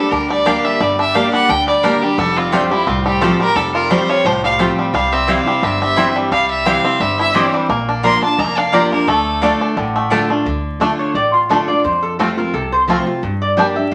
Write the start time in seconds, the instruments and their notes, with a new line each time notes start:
Already playing: five-string banjo G3 D4, steel-string acoustic guitar D4 G4, fiddle A4
0.11 upright bass D2, steel-string acoustic guitar D3, five-string banjo D4, fiddle A#4
0.30 five-string banjo G3, fiddle D5
0.45 steel-string acoustic guitar G3 A#3 D4 G4, mandolin A#3 G4 D5 G5, five-string banjo D4, fiddle F5
0.65 five-string banjo G3, fiddle E5
0.80 upright bass G1, steel-string acoustic guitar G2, five-string banjo G3, fiddle D5
0.99 five-string banjo D4, fiddle E5
1.14 steel-string acoustic guitar G3 A#3 D4 G4, mandolin A#3 G4 D5 G5, five-string banjo D4, fiddle F5
1.33 five-string banjo G3, fiddle F#5
1.49 upright bass D2, steel-string acoustic guitar D3, five-string banjo D4, fiddle G5
1.68 five-string banjo G3, fiddle D5
1.83 steel-string acoustic guitar G3 A#3 D4 G4, mandolin A#3 G4 D5 G5, five-string banjo D4, fiddle A#4
2.02 five-string banjo G3, steel-string acoustic guitar D4 G4, fiddle G4
2.18 upright bass F1, steel-string acoustic guitar F2, five-string banjo G3, fiddle A4
2.37 five-string banjo C4, fiddle F4
2.52 steel-string acoustic guitar F3 G3 C4 G4, mandolin A3 F4 C5 G5, fiddle D4, five-string banjo F4
2.71 five-string banjo G3, steel-string acoustic guitar C4 G4, fiddle E4
2.87 upright bass C2, steel-string acoustic guitar A2, five-string banjo C4, fiddle F4
3.06 five-string banjo G3, fiddle G4
3.21 steel-string acoustic guitar F3 G3 C4 G4, mandolin A3 F4 C5 G5, five-string banjo F4, fiddle A4
3.39 five-string banjo G3, steel-string acoustic guitar C4 G4, fiddle A#4
3.56 upright bass F1, steel-string acoustic guitar F2, five-string banjo G3, fiddle A4
3.74 five-string banjo F4, fiddle A#4
3.90 steel-string acoustic guitar F3 G3 C4 G4, five-string banjo G3, mandolin A3 F4 C5 G5, fiddle C5
4.09 five-string banjo F4, fiddle C#5
4.25 upright bass C2, steel-string acoustic guitar A2, five-string banjo F3, fiddle C5
4.44 five-string banjo G3, fiddle F5
4.59 steel-string acoustic guitar F3 G3 C4 G4, mandolin A3 F4 C5 G5, five-string banjo F4
4.79 five-string banjo G3
4.94 upright bass C2, steel-string acoustic guitar C3, five-string banjo G3, fiddle F5
5.12 five-string banjo C4, fiddle E5
5.27 steel-string acoustic guitar E3 G3 C4 E4, mandolin C4 E4 C5 G5, fiddle F5
5.46 five-string banjo G3, steel-string acoustic guitar C4 E4
5.63 upright bass G1, steel-string acoustic guitar G2, five-string banjo C4, fiddle E5
5.82 five-string banjo G3, fiddle E5
5.96 steel-string acoustic guitar E3 G3 C4 E4, mandolin C4 E4 C5 G5, five-string banjo E4
6.16 five-string banjo G3
6.31 upright bass C2, steel-string acoustic guitar C3, five-string banjo G3, fiddle F5
6.50 fiddle E5
6.65 steel-string acoustic guitar E3 G3 C4 E4, five-string banjo G3, mandolin C4 E4 C5 G5, fiddle F5
6.84 five-string banjo C4, steel-string acoustic guitar C4 E4
7.00 upright bass G1, steel-string acoustic guitar G2, five-string banjo G3, fiddle E5
7.19 five-string banjo E4, fiddle E5
7.34 steel-string acoustic guitar E3 G3 C4 E4, mandolin C4 E4 C5 G5, five-string banjo G4
7.54 five-string banjo G3
7.69 upright bass A#1, steel-string acoustic guitar A#2, five-string banjo A#3
7.89 five-string banjo D4
8.03 steel-string acoustic guitar F3 A#3 D4 F4, mandolin A#3 F4 D5 A#5, five-string banjo A#3, fiddle C6
8.22 five-string banjo D4, steel-string acoustic guitar D4 F4, fiddle A5
8.38 upright bass F1, steel-string acoustic guitar F2, five-string banjo G#3, fiddle A#5
8.46 five-string banjo A#3
8.58 five-string banjo D4, fiddle F5
8.72 steel-string acoustic guitar F3 A#3 D4 F4, mandolin A#3 F4 D5 A#5, five-string banjo G4, fiddle D5
8.91 five-string banjo A#3, steel-string acoustic guitar D4 F4, fiddle A#4
9.07 upright bass D2, steel-string acoustic guitar D3, five-string banjo A3, fiddle A4
9.41 steel-string acoustic guitar D3 A3 D4 F4, mandolin A3 F4 D5 A5, five-string banjo A3
9.61 five-string banjo D4
9.77 upright bass A1, steel-string acoustic guitar A2, five-string banjo D3
9.96 five-string banjo A3
10.10 steel-string acoustic guitar D3 A3 D4 F4, mandolin A3 F4 D5 A5, five-string banjo D4
10.30 five-string banjo A3, steel-string acoustic guitar D4 F4
10.45 upright bass D2, steel-string acoustic guitar D3
10.80 steel-string acoustic guitar D3 A3 D4 F4, five-string banjo A3 D4
10.99 resonator guitar played with a steel bar C#5
11.14 upright bass A1, steel-string acoustic guitar A2, resonator guitar played with a steel bar D5
11.34 resonator guitar played with a steel bar F4
11.49 steel-string acoustic guitar D3 A3 D4 F4, five-string banjo A3 D4, resonator guitar played with a steel bar A4
11.68 steel-string acoustic guitar D4 F4, resonator guitar played with a steel bar D5
11.84 upright bass F2, steel-string acoustic guitar F2, resonator guitar played with a steel bar C5
12.03 resonator guitar played with a steel bar A4
12.19 steel-string acoustic guitar F3 A3 C4 F4, five-string banjo A3 C4 F4, resonator guitar played with a steel bar G4
12.37 steel-string acoustic guitar C4 F4, resonator guitar played with a steel bar A#4
12.54 upright bass C2, steel-string acoustic guitar C3, resonator guitar played with a steel bar A4
12.72 resonator guitar played with a steel bar C5
12.88 steel-string acoustic guitar F3 A3 C4 F4, five-string banjo A3 C4 F4
13.06 steel-string acoustic guitar C4 F4
13.23 steel-string acoustic guitar G2, upright bass G2
13.42 resonator guitar played with a steel bar D5
13.57 steel-string acoustic guitar G3 A#3 D4 G4, five-string banjo G3 D4, resonator guitar played with a steel bar G5
13.76 steel-string acoustic guitar D4 G4, resonator guitar played with a steel bar E5